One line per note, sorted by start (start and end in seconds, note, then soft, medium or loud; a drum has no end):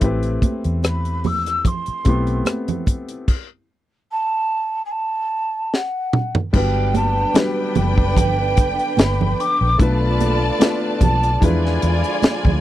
0.01 0.37 A1 medium
0.01 1.36 A3 medium
0.01 1.37 C4 medium
0.01 1.37 E4 medium
0.01 1.38 G4 medium
0.01 1.38 B4 medium
0.01 kick medium
0.01 closed hi-hat medium
0.23 closed hi-hat medium
0.42 kick medium
0.42 closed hi-hat medium
0.42 muted conga soft
0.42 high conga medium
0.64 1.61 E2 medium
0.64 closed hi-hat soft
0.83 1.28 B5 medium
0.83 cross-stick loud
0.83 closed hi-hat medium
0.83 muted conga soft
1.05 closed hi-hat soft
1.24 1.68 E6 loud
1.24 open hi-hat soft
1.24 muted conga soft
1.24 high conga medium
1.24 low conga medium
1.46 cross-stick soft
1.46 closed hi-hat medium
1.65 2.47 C6 medium
1.65 kick medium
1.65 closed hi-hat medium
1.65 muted conga soft
1.65 low conga medium
1.86 muted fingered electric bass stroke soft
1.86 closed hi-hat soft
2.05 2.41 B1 medium
2.05 3.07 A3 medium
2.05 3.09 B3 medium
2.05 3.08 C4 medium
2.05 3.08 E4 medium
2.05 3.08 G4 medium
2.05 kick medium
2.05 closed hi-hat medium
2.05 muted conga soft
2.27 closed hi-hat soft
2.45 cross-stick loud
2.45 closed hi-hat medium
2.45 high conga medium
2.68 closed hi-hat medium
2.68 low conga medium
2.86 kick medium
2.86 closed hi-hat medium
2.86 muted conga soft
3.09 closed hi-hat medium
3.28 kick medium
3.28 crash medium
4.11 4.81 A5 loud
4.85 4.92 G#5 medium
4.91 5.75 A5 medium
5.74 6.36 F#5 medium
5.74 snare soft
6.13 mid tom medium
6.35 floor tom medium
6.53 7.24 G1 loud
6.53 9.76 D3 medium
6.53 7.23 F#3 medium
6.53 7.21 G3 medium
6.53 7.22 B3 medium
6.53 11.38 B3 medium
6.53 9.75 D4 medium
6.53 7.22 D4 medium
6.53 9.76 B4 medium
6.53 9.75 B4 medium
6.53 7.23 B4 medium
6.53 9.75 G5 medium
6.53 6.97 G5 medium
6.53 kick loud
6.53 crash medium
6.53 muted conga soft
6.94 7.37 A5 medium
6.94 closed hi-hat medium
6.94 muted conga soft
6.94 high conga medium
7.34 8.71 F#3 medium
7.34 8.70 G3 medium
7.34 8.70 B3 medium
7.34 8.71 D4 medium
7.34 8.18 B5 loud
7.34 snare loud
7.34 closed hi-hat medium
7.34 muted conga soft
7.34 high conga soft
7.38 8.72 B4 medium
7.75 8.17 F#1 medium
7.75 closed hi-hat medium
7.75 muted conga soft
7.75 high conga medium
7.75 low conga medium
7.98 kick medium
8.16 8.58 G1 medium
8.16 9.00 G5 loud
8.16 kick medium
8.16 closed hi-hat medium
8.16 low conga medium
8.57 8.77 F#1 medium
8.57 kick medium
8.57 closed hi-hat medium
8.79 closed hi-hat soft
8.97 9.33 G1 medium
8.97 9.41 B5 loud
8.97 snare loud
8.97 closed hi-hat medium
8.97 high conga medium
9.21 low conga medium
9.40 9.80 D6 loud
9.40 closed hi-hat medium
9.61 9.77 A#1 medium
9.78 10.50 B1 loud
9.78 12.61 D3 medium
9.78 10.47 A3 medium
9.78 10.47 B3 medium
9.78 10.48 D4 medium
9.78 11.39 F4 medium
9.78 10.48 F4 medium
9.78 11.40 A4 medium
9.78 10.49 B4 medium
9.78 11.39 D5 medium
9.78 11.39 A5 medium
9.78 10.75 B5 loud
9.78 kick loud
9.78 closed hi-hat medium
9.78 muted conga soft
10.20 closed hi-hat medium
10.20 high conga medium
10.59 11.41 A3 medium
10.59 11.42 B3 medium
10.59 11.39 D4 medium
10.59 11.41 F4 medium
10.59 11.42 B4 medium
10.59 snare loud
10.59 closed hi-hat loud
10.59 high conga soft
11.01 11.36 B1 medium
11.01 11.45 A5 loud
11.01 kick medium
11.01 closed hi-hat medium
11.01 muted conga soft
11.01 high conga medium
11.01 low conga medium
11.23 closed hi-hat medium
11.40 11.77 E2 medium
11.40 12.61 F3 medium
11.40 12.61 G#3 medium
11.40 12.61 D4 medium
11.40 12.61 E4 medium
11.40 12.61 F4 medium
11.40 12.61 B4 medium
11.40 12.61 D5 medium
11.40 12.61 G#5 loud
11.40 12.61 B5 loud
11.40 kick medium
11.40 closed hi-hat medium
11.40 low conga medium
11.65 snare soft
11.82 12.02 E2 medium
11.82 closed hi-hat medium
12.04 closed hi-hat soft
12.22 muted fingered electric bass stroke soft
12.22 snare loud
12.22 closed hi-hat medium
12.22 high conga medium
12.45 12.61 D2 medium
12.45 kick medium
12.45 low conga medium